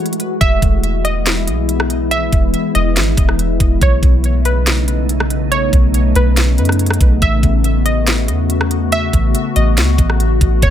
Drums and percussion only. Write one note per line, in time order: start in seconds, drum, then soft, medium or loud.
0.06 closed hi-hat medium
0.13 closed hi-hat medium
0.20 closed hi-hat medium
0.41 kick loud
0.41 closed hi-hat medium
0.62 kick medium
0.62 closed hi-hat medium
0.84 closed hi-hat medium
1.05 closed hi-hat medium
1.26 snare loud
1.26 closed hi-hat medium
1.48 closed hi-hat medium
1.69 closed hi-hat medium
1.80 cross-stick loud
1.90 closed hi-hat medium
2.11 closed hi-hat medium
2.32 kick medium
2.32 closed hi-hat medium
2.54 closed hi-hat medium
2.75 closed hi-hat medium
2.96 snare loud
2.96 closed hi-hat medium
3.17 kick loud
3.17 closed hi-hat medium
3.29 cross-stick medium
3.39 closed hi-hat medium
3.60 kick medium
3.60 closed hi-hat medium
3.81 kick loud
3.81 closed hi-hat medium
4.03 kick loud
4.03 closed hi-hat medium
4.24 closed hi-hat medium
4.45 closed hi-hat medium
4.66 snare loud
4.66 closed hi-hat medium
4.88 closed hi-hat medium
5.09 closed hi-hat medium
5.20 cross-stick loud
5.30 closed hi-hat medium
5.52 closed hi-hat medium
5.73 kick medium
5.73 closed hi-hat medium
5.94 closed hi-hat medium
6.15 closed hi-hat medium
6.37 snare loud
6.37 closed hi-hat medium
6.58 closed hi-hat medium
6.65 cross-stick medium
6.65 closed hi-hat medium
6.72 closed hi-hat medium
6.79 closed hi-hat medium
6.86 closed hi-hat medium
6.90 cross-stick loud
6.90 closed hi-hat medium
7.01 kick medium
7.01 closed hi-hat medium
7.22 kick loud
7.22 closed hi-hat medium
7.43 kick medium
7.43 closed hi-hat medium
7.64 closed hi-hat medium
7.86 closed hi-hat medium
8.07 snare loud
8.07 closed hi-hat medium
8.28 closed hi-hat medium
8.50 closed hi-hat medium
8.61 cross-stick loud
8.71 closed hi-hat medium
8.92 closed hi-hat medium
9.13 kick medium
9.13 closed hi-hat medium
9.35 closed hi-hat medium
9.56 closed hi-hat medium
9.77 snare loud
9.77 closed hi-hat medium
9.98 kick loud
9.98 closed hi-hat medium
10.10 cross-stick medium
10.20 closed hi-hat medium
10.41 kick medium
10.41 closed hi-hat medium
10.62 kick loud
10.62 closed hi-hat medium